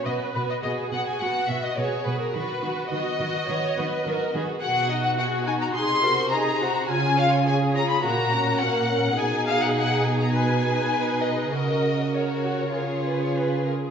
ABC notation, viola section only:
X:1
M:4/4
L:1/16
Q:1/4=105
K:B
V:1 name="Viola section"
B4 G4 F4 G4 | F8 c2 B2 A2 G2 | [K:G#dor] F8 G2 A2 G2 F2 | E4 G4 F4 A4 |
G8 B2 B6 | A4 A2 F A A2 B c B2 A G |]